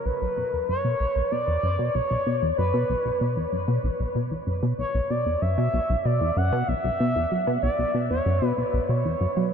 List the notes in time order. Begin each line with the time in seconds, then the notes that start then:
0.05 B1 B4
0.21 B1
0.37 B2
0.53 E2
0.69 F#2 C#5
0.84 B2
1.00 B1
1.16 B1
1.31 B2 D5
1.47 E2
1.63 F#2
1.79 B2
1.94 B1 C#5
2.10 B1
2.26 B2
2.42 E2
2.58 F#2 B4
2.74 B2
2.89 B1
3.05 B1
3.21 B2
3.36 E2
3.52 F#2
3.68 B2
3.84 B1
4.00 B1
4.15 B2
4.31 E2
4.47 F#2
4.62 B2
4.78 B1 C#5
4.94 B1
5.10 B2 D5
5.26 E2
5.42 F#2 E5
5.58 B2
5.73 B1
5.89 B1
6.05 B2 D5
6.21 E2
6.36 F#2 F#5
6.52 B2
6.68 B1 E5
6.84 B1
7.00 B2
7.16 E2
7.31 F#2
7.47 B2
7.63 B1 D5
7.79 B1
7.94 B2
8.10 E2 C#5
8.26 F#2
8.42 B2
8.47 B4
8.57 B1 B4
8.73 B1
8.89 B2 C#5
9.05 E2
9.21 F#2
9.37 F#3